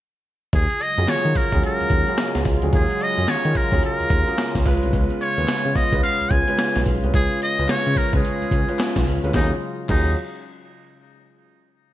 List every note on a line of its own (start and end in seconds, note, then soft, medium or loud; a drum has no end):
0.53 0.66 D#2 loud
0.53 9.30 C#3 medium
0.53 4.62 F#3 medium
0.53 4.62 G#3 medium
0.53 9.30 F4 loud
0.53 0.84 G#4 medium
0.53 kick loud
0.53 closed hi-hat medium
0.53 tambourine medium
0.70 closed hi-hat soft
0.81 1.11 D#5 loud
0.81 closed hi-hat medium
0.81 tambourine medium
0.98 1.06 F#2 loud
0.98 1.32 F#3 medium
0.98 1.33 C#4 medium
0.98 1.33 F4 medium
0.98 1.33 G#4 medium
0.98 closed hi-hat medium
1.08 1.15 D#3 soft
1.08 1.39 C#5 loud
1.08 snare loud
1.08 clap medium
1.08 closed hi-hat medium
1.08 tambourine medium
1.25 1.33 D#3 loud
1.25 closed hi-hat medium
1.35 1.64 A#4 medium
1.35 kick medium
1.35 open hi-hat medium
1.35 tambourine medium
1.52 1.61 D#2 medium
1.52 1.87 F#3 medium
1.52 1.88 C#4 medium
1.52 1.88 F4 medium
1.52 1.88 G#4 loud
1.52 kick loud
1.52 closed hi-hat medium
1.63 2.43 A#4 medium
1.63 closed hi-hat medium
1.63 tambourine medium
1.80 1.85 D#2 soft
1.80 closed hi-hat medium
1.90 2.03 D#2 medium
1.90 kick medium
1.90 closed hi-hat medium
1.90 tambourine medium
2.07 2.42 F#3 medium
2.07 2.43 C#4 medium
2.07 2.43 F4 medium
2.07 2.43 G#4 medium
2.07 closed hi-hat medium
2.18 snare loud
2.18 clap medium
2.18 closed hi-hat medium
2.18 tambourine medium
2.35 2.43 C#2 loud
2.35 snare medium
2.35 closed hi-hat medium
2.45 2.58 C#2 loud
2.45 kick medium
2.45 open hi-hat medium
2.62 2.71 D2 medium
2.62 2.97 F#3 medium
2.62 2.98 C#4 medium
2.62 2.98 F4 medium
2.62 2.98 G#4 medium
2.62 closed hi-hat medium
2.73 2.86 D#2 loud
2.73 3.04 G#4 medium
2.73 kick loud
2.73 closed hi-hat medium
2.73 tambourine medium
2.90 closed hi-hat soft
3.01 3.31 D#5 loud
3.01 closed hi-hat medium
3.01 tambourine medium
3.17 3.26 F#2 medium
3.17 3.52 F#3 medium
3.17 3.53 C#4 medium
3.17 3.53 F4 medium
3.17 3.53 G#4 medium
3.17 closed hi-hat medium
3.28 3.35 D#3 soft
3.28 3.58 C#5 loud
3.28 snare loud
3.28 clap medium
3.28 closed hi-hat medium
3.28 tambourine loud
3.45 3.53 D#3 loud
3.45 closed hi-hat medium
3.55 3.84 A#4 medium
3.55 kick medium
3.55 open hi-hat medium
3.55 tambourine medium
3.72 3.81 D#2 medium
3.72 4.07 F#3 medium
3.72 4.07 C#4 medium
3.72 4.08 F4 medium
3.72 4.08 G#4 loud
3.72 kick loud
3.72 closed hi-hat medium
3.83 4.63 A#4 medium
3.83 closed hi-hat medium
3.83 tambourine medium
4.00 4.04 D#2 soft
4.00 closed hi-hat medium
4.10 4.23 D#2 loud
4.10 kick loud
4.10 closed hi-hat medium
4.10 tambourine medium
4.27 4.62 F#3 medium
4.27 4.63 C#4 medium
4.27 4.63 F4 medium
4.27 4.63 G#4 medium
4.27 closed hi-hat medium
4.38 snare loud
4.38 clap medium
4.38 closed hi-hat medium
4.38 tambourine medium
4.55 4.63 C#2 medium
4.55 kick loud
4.55 snare medium
4.55 closed hi-hat medium
4.66 4.79 C#2 loud
4.66 5.21 G#3 loud
4.66 6.84 B3 medium
4.66 5.21 C#4 medium
4.66 5.21 F4 medium
4.66 5.21 B4 loud
4.66 kick medium
4.66 open hi-hat medium
4.83 4.91 C2 medium
4.83 closed hi-hat medium
4.93 5.06 C#2 loud
4.93 kick loud
4.93 closed hi-hat medium
4.93 tambourine medium
5.10 closed hi-hat soft
5.21 5.78 C#5 loud
5.21 closed hi-hat medium
5.21 tambourine medium
5.37 5.46 D#2 medium
5.37 5.72 G#3 medium
5.37 5.72 C#4 medium
5.37 5.73 F4 medium
5.37 5.73 B4 medium
5.37 closed hi-hat medium
5.48 5.55 C#3 soft
5.48 snare loud
5.48 clap medium
5.48 closed hi-hat medium
5.48 tambourine medium
5.65 5.73 C#3 loud
5.65 closed hi-hat medium
5.76 6.03 D#5 medium
5.76 kick loud
5.76 open hi-hat medium
5.76 tambourine medium
5.92 6.01 C#2 medium
5.92 6.27 G#3 medium
5.92 6.28 C#4 medium
5.92 6.28 F4 medium
5.92 6.28 B4 medium
5.92 kick loud
5.92 closed hi-hat medium
6.03 6.33 F5 loud
6.03 closed hi-hat medium
6.03 tambourine medium
6.21 6.25 C#2 soft
6.21 closed hi-hat medium
6.31 6.44 C#2 medium
6.31 6.86 G#5 loud
6.31 kick loud
6.31 closed hi-hat medium
6.31 tambourine medium
6.48 6.83 G#3 medium
6.48 6.83 C#4 medium
6.48 6.83 F4 medium
6.48 6.83 B4 medium
6.48 closed hi-hat medium
6.58 snare loud
6.58 clap medium
6.58 closed hi-hat medium
6.58 tambourine medium
6.76 6.84 B1 medium
6.76 snare medium
6.76 closed hi-hat medium
6.86 6.99 B1 loud
6.86 9.31 C#4 medium
6.86 kick loud
6.86 open hi-hat medium
7.03 7.11 C2 loud
7.03 7.38 G#3 medium
7.03 7.38 C#4 medium
7.03 7.38 F4 medium
7.03 7.39 B4 medium
7.03 closed hi-hat medium
7.14 7.27 C#2 loud
7.14 7.40 G#4 loud
7.14 kick loud
7.14 closed hi-hat medium
7.14 tambourine medium
7.31 closed hi-hat soft
7.42 7.72 D#5 loud
7.42 closed hi-hat medium
7.42 tambourine medium
7.58 7.67 C#2 loud
7.58 7.93 G#3 medium
7.58 7.93 C#4 medium
7.58 7.93 F4 medium
7.58 7.93 B4 medium
7.58 closed hi-hat medium
7.69 7.76 C#3 soft
7.69 7.99 C#5 loud
7.69 snare loud
7.69 clap medium
7.69 closed hi-hat medium
7.69 tambourine medium
7.86 7.94 C#3 loud
7.86 closed hi-hat medium
7.96 8.14 A#4 medium
7.96 kick medium
7.96 open hi-hat medium
7.96 tambourine medium
8.13 8.21 C#2 medium
8.13 8.48 G#3 medium
8.13 8.48 C#4 medium
8.13 8.49 F4 medium
8.13 9.03 G#4 medium
8.13 8.49 B4 medium
8.13 kick loud
8.13 closed hi-hat medium
8.25 closed hi-hat medium
8.25 tambourine medium
8.41 8.45 C#2 soft
8.41 closed hi-hat soft
8.51 8.64 C#2 medium
8.51 kick loud
8.51 closed hi-hat medium
8.51 tambourine medium
8.69 9.03 G#3 medium
8.69 9.03 C#4 medium
8.69 9.03 F4 medium
8.69 9.04 B4 medium
8.69 closed hi-hat medium
8.79 snare loud
8.79 clap medium
8.79 closed hi-hat medium
8.79 tambourine medium
8.96 9.04 B1 loud
8.96 kick loud
8.96 snare medium
8.96 closed hi-hat medium
9.06 9.19 C#2 medium
9.06 open hi-hat medium
9.23 9.31 D2 medium
9.23 9.34 G#3 medium
9.23 9.34 C#4 medium
9.23 9.34 F4 medium
9.23 9.35 B4 loud
9.23 closed hi-hat medium
9.34 9.52 D#2 loud
9.34 9.59 C#3 medium
9.34 9.60 F#3 medium
9.34 9.52 F#3 medium
9.34 9.60 G#3 medium
9.34 9.52 C#4 medium
9.34 9.52 D#4 medium
9.34 9.60 F4 medium
9.34 9.52 F4 medium
9.34 9.52 G#4 medium
9.34 kick loud
9.34 snare medium
9.34 clap medium
9.89 10.15 D#2 loud
9.89 10.15 F#3 medium
9.89 10.15 C#4 medium
9.89 10.15 D#4 medium
9.89 10.15 F4 medium
9.89 10.15 G#4 medium
9.89 kick loud
9.89 clap medium
9.89 crash medium